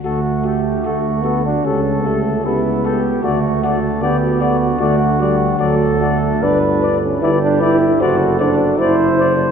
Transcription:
<<
  \new Staff \with { instrumentName = "Trumpet" } { \time 4/4 \key d \major \tempo 4 = 76 a'8 a'8 a'8 a'8 a'8 a'8 a'8 a'8 | d''8 d''8 d''8 d''8 d''8 d''8 d''8 d''8 | d''8 d''8 d''8 d''8 d''8 d''8 d''8 d''8 | }
  \new Staff \with { instrumentName = "Flugelhorn" } { \time 4/4 \key d \major fis'8 g'8 fis'4 a'4 e'8 g'8 | fis'8 a'8 g'8 fis'4. a'4 | b'8 r8 g'4 a'4 c''4 | }
  \new Staff \with { instrumentName = "French horn" } { \time 4/4 \key d \major fis'8 fis'8 fis'8 fis'8 g'8 g'8 g'8 g'8 | fis'8 fis'8 fis'8 fis'8 fis'8 fis'8 fis'8 fis'8 | b'8 b'8 b'8 b'8 c''8 c''8 c''8 c''8 | }
  \new Staff \with { instrumentName = "Trombone" } { \time 4/4 \key d \major a4. b16 d'16 cis'8 a8 b4 | a4 b4 a8 g8 fis8 a8 | d'8. cis'16 e'16 d'16 e'8 fis'8 d'8 e'8. r16 | }
  \new Staff \with { instrumentName = "Tuba" } { \clef bass \time 4/4 \key d \major d,4 d,4 cis,4 cis,4 | d,4 d,4 d,4 d,4 | g,,4 g,,4 fis,,4 fis,,4 | }
>>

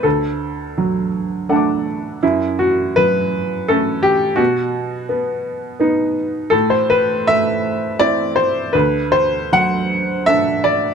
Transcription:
<<
  \new Staff \with { instrumentName = "Upright piano" } { \time 3/4 \key d \mixolydian \tempo 4 = 83 a'2~ a'8 r8 | e'8 fis'8 b'4 a'8 g'8 | fis'2~ fis'8 r8 | a'16 c''16 b'8 e''4 d''8 c''8 |
b'8 c''8 fis''4 e''8 d''8 | }
  \new Staff \with { instrumentName = "Upright piano" } { \time 3/4 \key d \mixolydian d,4 fis4 <a d' fis'' a'' d'''>4 | fis,4 fis4 <a cis'>4 | b,4 b4 <b dis'>4 | a,4 a4 <c' e'>4 |
d,4 fis4 <a d'>4 | }
>>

